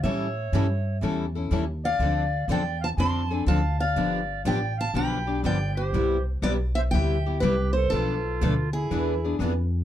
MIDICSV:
0, 0, Header, 1, 6, 480
1, 0, Start_track
1, 0, Key_signature, 0, "minor"
1, 0, Tempo, 492207
1, 39, Time_signature, 4, 2, 24, 8
1, 9596, End_track
2, 0, Start_track
2, 0, Title_t, "Steel-string acoustic guitar"
2, 0, Program_c, 0, 25
2, 35, Note_on_c, 0, 76, 88
2, 954, Note_off_c, 0, 76, 0
2, 1805, Note_on_c, 0, 77, 96
2, 2400, Note_off_c, 0, 77, 0
2, 2455, Note_on_c, 0, 79, 88
2, 2765, Note_off_c, 0, 79, 0
2, 2769, Note_on_c, 0, 81, 97
2, 2818, Note_off_c, 0, 81, 0
2, 2923, Note_on_c, 0, 84, 97
2, 3284, Note_off_c, 0, 84, 0
2, 3284, Note_on_c, 0, 83, 97
2, 3390, Note_off_c, 0, 83, 0
2, 3394, Note_on_c, 0, 81, 96
2, 3710, Note_on_c, 0, 77, 96
2, 3716, Note_off_c, 0, 81, 0
2, 4359, Note_off_c, 0, 77, 0
2, 4363, Note_on_c, 0, 79, 91
2, 4649, Note_off_c, 0, 79, 0
2, 4687, Note_on_c, 0, 81, 101
2, 4837, Note_off_c, 0, 81, 0
2, 4841, Note_on_c, 0, 83, 96
2, 5321, Note_off_c, 0, 83, 0
2, 5325, Note_on_c, 0, 79, 83
2, 5629, Note_on_c, 0, 72, 67
2, 5642, Note_off_c, 0, 79, 0
2, 6074, Note_off_c, 0, 72, 0
2, 6275, Note_on_c, 0, 74, 100
2, 6360, Note_off_c, 0, 74, 0
2, 6584, Note_on_c, 0, 76, 103
2, 6633, Note_off_c, 0, 76, 0
2, 6738, Note_on_c, 0, 79, 105
2, 7192, Note_off_c, 0, 79, 0
2, 7220, Note_on_c, 0, 71, 84
2, 7533, Note_off_c, 0, 71, 0
2, 7537, Note_on_c, 0, 72, 85
2, 7704, Note_on_c, 0, 69, 103
2, 7713, Note_off_c, 0, 72, 0
2, 8467, Note_off_c, 0, 69, 0
2, 8515, Note_on_c, 0, 68, 83
2, 9121, Note_off_c, 0, 68, 0
2, 9596, End_track
3, 0, Start_track
3, 0, Title_t, "Recorder"
3, 0, Program_c, 1, 74
3, 23, Note_on_c, 1, 73, 76
3, 948, Note_off_c, 1, 73, 0
3, 1792, Note_on_c, 1, 74, 83
3, 2393, Note_off_c, 1, 74, 0
3, 2439, Note_on_c, 1, 74, 82
3, 2727, Note_off_c, 1, 74, 0
3, 2734, Note_on_c, 1, 77, 72
3, 2793, Note_off_c, 1, 77, 0
3, 2895, Note_on_c, 1, 81, 96
3, 3227, Note_off_c, 1, 81, 0
3, 3227, Note_on_c, 1, 80, 96
3, 3348, Note_off_c, 1, 80, 0
3, 3384, Note_on_c, 1, 77, 79
3, 3679, Note_off_c, 1, 77, 0
3, 3700, Note_on_c, 1, 74, 88
3, 4308, Note_off_c, 1, 74, 0
3, 4338, Note_on_c, 1, 74, 87
3, 4636, Note_off_c, 1, 74, 0
3, 4647, Note_on_c, 1, 77, 75
3, 4808, Note_off_c, 1, 77, 0
3, 4827, Note_on_c, 1, 79, 89
3, 5274, Note_off_c, 1, 79, 0
3, 5309, Note_on_c, 1, 74, 72
3, 5603, Note_off_c, 1, 74, 0
3, 5614, Note_on_c, 1, 67, 62
3, 6066, Note_off_c, 1, 67, 0
3, 6274, Note_on_c, 1, 71, 76
3, 6345, Note_off_c, 1, 71, 0
3, 6600, Note_on_c, 1, 72, 85
3, 6658, Note_off_c, 1, 72, 0
3, 6751, Note_on_c, 1, 76, 92
3, 7199, Note_off_c, 1, 76, 0
3, 7241, Note_on_c, 1, 67, 75
3, 7531, Note_off_c, 1, 67, 0
3, 7558, Note_on_c, 1, 69, 74
3, 7707, Note_off_c, 1, 69, 0
3, 7733, Note_on_c, 1, 65, 88
3, 8482, Note_off_c, 1, 65, 0
3, 8518, Note_on_c, 1, 64, 72
3, 9123, Note_off_c, 1, 64, 0
3, 9596, End_track
4, 0, Start_track
4, 0, Title_t, "Steel-string acoustic guitar"
4, 0, Program_c, 2, 25
4, 7731, Note_on_c, 2, 71, 78
4, 7941, Note_off_c, 2, 71, 0
4, 8219, Note_on_c, 2, 71, 103
4, 8323, Note_off_c, 2, 71, 0
4, 8701, Note_on_c, 2, 71, 80
4, 8908, Note_off_c, 2, 71, 0
4, 9194, Note_on_c, 2, 71, 86
4, 9292, Note_off_c, 2, 71, 0
4, 9596, End_track
5, 0, Start_track
5, 0, Title_t, "Steel-string acoustic guitar"
5, 0, Program_c, 3, 25
5, 47, Note_on_c, 3, 52, 61
5, 49, Note_on_c, 3, 61, 72
5, 52, Note_on_c, 3, 55, 73
5, 52, Note_on_c, 3, 69, 72
5, 53, Note_on_c, 3, 64, 67
5, 260, Note_off_c, 3, 52, 0
5, 261, Note_off_c, 3, 61, 0
5, 262, Note_off_c, 3, 55, 0
5, 263, Note_off_c, 3, 64, 0
5, 263, Note_off_c, 3, 69, 0
5, 533, Note_on_c, 3, 52, 83
5, 534, Note_on_c, 3, 55, 96
5, 536, Note_on_c, 3, 61, 88
5, 537, Note_on_c, 3, 69, 93
5, 539, Note_on_c, 3, 64, 92
5, 640, Note_off_c, 3, 52, 0
5, 641, Note_off_c, 3, 55, 0
5, 641, Note_off_c, 3, 61, 0
5, 642, Note_off_c, 3, 69, 0
5, 643, Note_off_c, 3, 64, 0
5, 1006, Note_on_c, 3, 52, 69
5, 1006, Note_on_c, 3, 61, 74
5, 1009, Note_on_c, 3, 55, 72
5, 1011, Note_on_c, 3, 69, 82
5, 1012, Note_on_c, 3, 64, 80
5, 1217, Note_off_c, 3, 52, 0
5, 1217, Note_off_c, 3, 61, 0
5, 1219, Note_off_c, 3, 55, 0
5, 1220, Note_off_c, 3, 64, 0
5, 1220, Note_off_c, 3, 69, 0
5, 1320, Note_on_c, 3, 69, 55
5, 1328, Note_on_c, 3, 64, 53
5, 1339, Note_on_c, 3, 61, 47
5, 1472, Note_off_c, 3, 69, 0
5, 1476, Note_off_c, 3, 64, 0
5, 1477, Note_off_c, 3, 61, 0
5, 1480, Note_on_c, 3, 52, 79
5, 1482, Note_on_c, 3, 55, 78
5, 1487, Note_on_c, 3, 69, 87
5, 1489, Note_on_c, 3, 61, 86
5, 1489, Note_on_c, 3, 64, 94
5, 1592, Note_off_c, 3, 52, 0
5, 1593, Note_off_c, 3, 55, 0
5, 1595, Note_off_c, 3, 69, 0
5, 1596, Note_off_c, 3, 61, 0
5, 1596, Note_off_c, 3, 64, 0
5, 1969, Note_on_c, 3, 50, 66
5, 1975, Note_on_c, 3, 62, 70
5, 1975, Note_on_c, 3, 69, 75
5, 1976, Note_on_c, 3, 53, 65
5, 1976, Note_on_c, 3, 60, 70
5, 2177, Note_off_c, 3, 50, 0
5, 2180, Note_off_c, 3, 62, 0
5, 2181, Note_off_c, 3, 53, 0
5, 2181, Note_off_c, 3, 60, 0
5, 2181, Note_off_c, 3, 69, 0
5, 2443, Note_on_c, 3, 50, 86
5, 2446, Note_on_c, 3, 62, 90
5, 2448, Note_on_c, 3, 53, 93
5, 2448, Note_on_c, 3, 69, 97
5, 2450, Note_on_c, 3, 60, 90
5, 2552, Note_off_c, 3, 50, 0
5, 2553, Note_off_c, 3, 62, 0
5, 2554, Note_off_c, 3, 53, 0
5, 2554, Note_off_c, 3, 69, 0
5, 2555, Note_off_c, 3, 60, 0
5, 2915, Note_on_c, 3, 50, 66
5, 2920, Note_on_c, 3, 53, 72
5, 2922, Note_on_c, 3, 60, 81
5, 2922, Note_on_c, 3, 62, 82
5, 2928, Note_on_c, 3, 69, 78
5, 3130, Note_off_c, 3, 50, 0
5, 3132, Note_off_c, 3, 53, 0
5, 3133, Note_off_c, 3, 60, 0
5, 3133, Note_off_c, 3, 62, 0
5, 3136, Note_off_c, 3, 69, 0
5, 3225, Note_on_c, 3, 69, 63
5, 3237, Note_on_c, 3, 62, 57
5, 3238, Note_on_c, 3, 60, 49
5, 3382, Note_off_c, 3, 60, 0
5, 3383, Note_off_c, 3, 69, 0
5, 3386, Note_off_c, 3, 62, 0
5, 3390, Note_on_c, 3, 50, 76
5, 3394, Note_on_c, 3, 60, 83
5, 3396, Note_on_c, 3, 53, 81
5, 3397, Note_on_c, 3, 62, 88
5, 3399, Note_on_c, 3, 69, 102
5, 3505, Note_off_c, 3, 50, 0
5, 3507, Note_off_c, 3, 53, 0
5, 3507, Note_off_c, 3, 60, 0
5, 3508, Note_off_c, 3, 62, 0
5, 3509, Note_off_c, 3, 69, 0
5, 3873, Note_on_c, 3, 50, 66
5, 3873, Note_on_c, 3, 53, 77
5, 3878, Note_on_c, 3, 67, 65
5, 3880, Note_on_c, 3, 59, 64
5, 3880, Note_on_c, 3, 62, 77
5, 4088, Note_off_c, 3, 50, 0
5, 4088, Note_off_c, 3, 53, 0
5, 4091, Note_off_c, 3, 67, 0
5, 4092, Note_off_c, 3, 59, 0
5, 4092, Note_off_c, 3, 62, 0
5, 4352, Note_on_c, 3, 50, 87
5, 4353, Note_on_c, 3, 53, 87
5, 4354, Note_on_c, 3, 59, 91
5, 4355, Note_on_c, 3, 62, 88
5, 4360, Note_on_c, 3, 67, 99
5, 4465, Note_off_c, 3, 50, 0
5, 4466, Note_off_c, 3, 53, 0
5, 4467, Note_off_c, 3, 59, 0
5, 4467, Note_off_c, 3, 62, 0
5, 4470, Note_off_c, 3, 67, 0
5, 4820, Note_on_c, 3, 50, 76
5, 4825, Note_on_c, 3, 53, 73
5, 4826, Note_on_c, 3, 59, 80
5, 4827, Note_on_c, 3, 62, 82
5, 4831, Note_on_c, 3, 67, 77
5, 5042, Note_off_c, 3, 50, 0
5, 5045, Note_off_c, 3, 53, 0
5, 5045, Note_off_c, 3, 59, 0
5, 5046, Note_off_c, 3, 62, 0
5, 5048, Note_off_c, 3, 67, 0
5, 5140, Note_on_c, 3, 67, 59
5, 5145, Note_on_c, 3, 62, 47
5, 5158, Note_on_c, 3, 59, 50
5, 5300, Note_off_c, 3, 67, 0
5, 5303, Note_off_c, 3, 62, 0
5, 5307, Note_off_c, 3, 59, 0
5, 5312, Note_on_c, 3, 50, 80
5, 5316, Note_on_c, 3, 53, 87
5, 5319, Note_on_c, 3, 59, 87
5, 5321, Note_on_c, 3, 62, 89
5, 5328, Note_on_c, 3, 67, 89
5, 5426, Note_off_c, 3, 50, 0
5, 5428, Note_off_c, 3, 53, 0
5, 5429, Note_off_c, 3, 59, 0
5, 5430, Note_off_c, 3, 62, 0
5, 5434, Note_off_c, 3, 67, 0
5, 5790, Note_on_c, 3, 48, 65
5, 5790, Note_on_c, 3, 55, 64
5, 5793, Note_on_c, 3, 59, 76
5, 5796, Note_on_c, 3, 64, 80
5, 5798, Note_on_c, 3, 67, 68
5, 6008, Note_off_c, 3, 48, 0
5, 6008, Note_off_c, 3, 55, 0
5, 6009, Note_off_c, 3, 59, 0
5, 6011, Note_off_c, 3, 64, 0
5, 6012, Note_off_c, 3, 67, 0
5, 6264, Note_on_c, 3, 48, 104
5, 6269, Note_on_c, 3, 55, 98
5, 6271, Note_on_c, 3, 59, 89
5, 6274, Note_on_c, 3, 64, 91
5, 6278, Note_on_c, 3, 67, 102
5, 6383, Note_off_c, 3, 48, 0
5, 6385, Note_off_c, 3, 55, 0
5, 6387, Note_off_c, 3, 59, 0
5, 6388, Note_off_c, 3, 64, 0
5, 6390, Note_off_c, 3, 67, 0
5, 6762, Note_on_c, 3, 48, 73
5, 6768, Note_on_c, 3, 55, 79
5, 6769, Note_on_c, 3, 59, 81
5, 6773, Note_on_c, 3, 64, 77
5, 6776, Note_on_c, 3, 67, 80
5, 6975, Note_off_c, 3, 48, 0
5, 6979, Note_off_c, 3, 55, 0
5, 6979, Note_off_c, 3, 59, 0
5, 6981, Note_off_c, 3, 64, 0
5, 6983, Note_off_c, 3, 67, 0
5, 7082, Note_on_c, 3, 67, 55
5, 7087, Note_on_c, 3, 64, 49
5, 7098, Note_on_c, 3, 59, 43
5, 7231, Note_off_c, 3, 59, 0
5, 7234, Note_off_c, 3, 67, 0
5, 7236, Note_off_c, 3, 64, 0
5, 7241, Note_on_c, 3, 55, 93
5, 7243, Note_on_c, 3, 48, 87
5, 7243, Note_on_c, 3, 59, 89
5, 7247, Note_on_c, 3, 64, 88
5, 7249, Note_on_c, 3, 67, 87
5, 7353, Note_off_c, 3, 55, 0
5, 7353, Note_off_c, 3, 59, 0
5, 7354, Note_off_c, 3, 48, 0
5, 7356, Note_off_c, 3, 64, 0
5, 7357, Note_off_c, 3, 67, 0
5, 7728, Note_on_c, 3, 53, 68
5, 7730, Note_on_c, 3, 47, 69
5, 7733, Note_on_c, 3, 62, 71
5, 7734, Note_on_c, 3, 57, 70
5, 7740, Note_on_c, 3, 69, 75
5, 7940, Note_off_c, 3, 47, 0
5, 7940, Note_off_c, 3, 53, 0
5, 7942, Note_off_c, 3, 62, 0
5, 7943, Note_off_c, 3, 57, 0
5, 7946, Note_off_c, 3, 69, 0
5, 8214, Note_on_c, 3, 47, 88
5, 8214, Note_on_c, 3, 53, 83
5, 8217, Note_on_c, 3, 57, 97
5, 8218, Note_on_c, 3, 62, 110
5, 8224, Note_on_c, 3, 69, 106
5, 8320, Note_off_c, 3, 47, 0
5, 8320, Note_off_c, 3, 53, 0
5, 8322, Note_off_c, 3, 57, 0
5, 8323, Note_off_c, 3, 62, 0
5, 8325, Note_off_c, 3, 69, 0
5, 8688, Note_on_c, 3, 52, 76
5, 8690, Note_on_c, 3, 59, 82
5, 8696, Note_on_c, 3, 68, 86
5, 8699, Note_on_c, 3, 62, 79
5, 8901, Note_off_c, 3, 52, 0
5, 8902, Note_off_c, 3, 59, 0
5, 8905, Note_off_c, 3, 68, 0
5, 8907, Note_off_c, 3, 62, 0
5, 9016, Note_on_c, 3, 68, 49
5, 9021, Note_on_c, 3, 62, 49
5, 9028, Note_on_c, 3, 59, 41
5, 9158, Note_off_c, 3, 59, 0
5, 9163, Note_off_c, 3, 68, 0
5, 9165, Note_on_c, 3, 52, 76
5, 9166, Note_off_c, 3, 62, 0
5, 9170, Note_on_c, 3, 59, 88
5, 9176, Note_on_c, 3, 62, 88
5, 9176, Note_on_c, 3, 68, 84
5, 9277, Note_off_c, 3, 52, 0
5, 9280, Note_off_c, 3, 59, 0
5, 9283, Note_off_c, 3, 62, 0
5, 9283, Note_off_c, 3, 68, 0
5, 9596, End_track
6, 0, Start_track
6, 0, Title_t, "Upright bass"
6, 0, Program_c, 4, 32
6, 32, Note_on_c, 4, 45, 88
6, 499, Note_off_c, 4, 45, 0
6, 511, Note_on_c, 4, 43, 80
6, 977, Note_off_c, 4, 43, 0
6, 995, Note_on_c, 4, 40, 85
6, 1459, Note_off_c, 4, 40, 0
6, 1470, Note_on_c, 4, 39, 86
6, 1936, Note_off_c, 4, 39, 0
6, 1940, Note_on_c, 4, 38, 80
6, 2410, Note_off_c, 4, 38, 0
6, 2417, Note_on_c, 4, 40, 89
6, 2888, Note_off_c, 4, 40, 0
6, 2899, Note_on_c, 4, 41, 85
6, 3369, Note_off_c, 4, 41, 0
6, 3379, Note_on_c, 4, 38, 93
6, 3849, Note_off_c, 4, 38, 0
6, 3861, Note_on_c, 4, 31, 76
6, 4330, Note_off_c, 4, 31, 0
6, 4341, Note_on_c, 4, 33, 89
6, 4810, Note_off_c, 4, 33, 0
6, 4814, Note_on_c, 4, 35, 86
6, 5287, Note_off_c, 4, 35, 0
6, 5299, Note_on_c, 4, 31, 94
6, 5770, Note_off_c, 4, 31, 0
6, 5781, Note_on_c, 4, 36, 78
6, 6252, Note_off_c, 4, 36, 0
6, 6261, Note_on_c, 4, 35, 91
6, 6732, Note_off_c, 4, 35, 0
6, 6753, Note_on_c, 4, 38, 87
6, 7219, Note_off_c, 4, 38, 0
6, 7235, Note_on_c, 4, 36, 108
6, 7701, Note_off_c, 4, 36, 0
6, 7720, Note_on_c, 4, 35, 84
6, 8184, Note_off_c, 4, 35, 0
6, 8204, Note_on_c, 4, 38, 89
6, 8667, Note_off_c, 4, 38, 0
6, 8685, Note_on_c, 4, 40, 83
6, 9148, Note_off_c, 4, 40, 0
6, 9157, Note_on_c, 4, 41, 94
6, 9596, Note_off_c, 4, 41, 0
6, 9596, End_track
0, 0, End_of_file